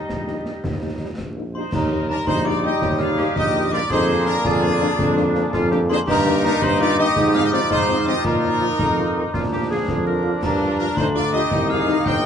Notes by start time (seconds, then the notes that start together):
Already playing: G3 D#4 G4 D#5
0.09 A#1, concert bass drum, snare
0.27 G3 A#3 D#4, snare
0.45 G3 A#3 D#4, snare
0.64 D#2, concert bass drum, snare
0.82 G3 A#3 D#4
0.99 G3 A#3 D#4
1.18 A#1, concert bass drum, snare
1.36 G3 A#3 D#4
1.54 G3 A#3 D#4 C5 C6
1.72 D#2 G3 D#4 A#4 A#5, concert bass drum, snare, crash
1.91 G3 A#3 D#4
2.09 G3 A#3 D4 D#4 A#4 A#5
2.26 A#1 D#4 C5 C6, concert bass drum, snare
2.45 G3 A#3 D#4 F4 D5 D6
2.63 G3 A#3 D#4 G4 D#5 D#6
2.81 D#2 G4, concert bass drum, snare
2.99 G3 A#3 D#4 F4 G#4 F5 F6, snare
3.17 G3 A#3 D#4 G4, snare
3.36 A#1 G4 D#5 D#6, concert bass drum, snare
3.54 G3 A#3 D#4, snare
3.71 G3 A#3 D#4 F4 D5 D6, snare
3.90 F2 A#3 D4 D#4 G#4 C5 C6, concert bass drum, snare, crash
4.08 F3 A#3 D4
4.26 F3 A#3 D4 A#4 A#5
4.44 F2 D4 F4 G#4 G#5, concert bass drum, snare
4.63 F3 A#3 D4
4.80 F3 A#3 D4
4.98 F2 D4, concert bass drum, snare
5.16 F3 A#3 D4, snare
5.35 F3 A#3 D4, snare
5.53 F2 F4, concert bass drum, snare
5.71 F3 A#3 D4 G4, snare
5.89 F3 A#3 D4 D#4 G#4 C5 C6, snare
6.06 G2 A#3 D#4 G4 A#4 A#5, concert bass drum, snare, crash
6.24 D#3 A#3 D#4
6.43 D#3 A#3 D4 D#4 A#4 A#5
6.62 G2 D#4 C5 C6, concert bass drum, snare
6.80 D#3 A#3 D#4 F4 D5 D6
6.98 D#3 A#3 D#4 G4 D#5 D#6
7.16 G#2 F3, concert bass drum, snare
7.34 D#3 F3 C4 G#4 F5 F6, snare
7.43 G4 D#5 D#6
7.52 D#3 F3 C4 F4 D5 D6, snare
7.70 G#2 D#4 F4 C5 C6, concert bass drum, snare
7.88 D#3 F3 C4, snare
8.06 D#3 F3 C4 G4 D#5 D#6, snare
8.24 A#2 D#4 F4 A#4 A#5, concert bass drum, snare, crash
8.42 D#3 F3 F4
8.61 D#3 F3 F4
8.79 F2 D#4, concert bass drum, snare
8.97 D#3 F3 F4
9.16 D#3 F3 D#4 F4
9.34 A#2 F3 D4 F4, concert bass drum, snare
9.52 D3 F3 F4 G4
9.70 D3 F3 F4 G#4
9.88 F2, concert bass drum, snare
10.06 D3 F3 F4 A#4
10.23 D3 F3 F4
10.42 G2 D4 A#4 A#5, concert bass drum, snare, crash
10.60 D3 G3 F4
10.78 D3 G3 D4 F4 A#4 A#5
10.96 D2 D#4 C5 C6, concert bass drum, snare
11.13 D3 G3 F4 D5 D6
11.32 D3 G3 F4 G4 D#5 D#6
11.51 C2 D#3 D#4, concert bass drum, snare
11.68 D#3 G3 D#4 G#4 F5 F6, snare
11.87 D#3 G3 D#4, snare
12.05 G1 C5 G5 G6, concert bass drum, snare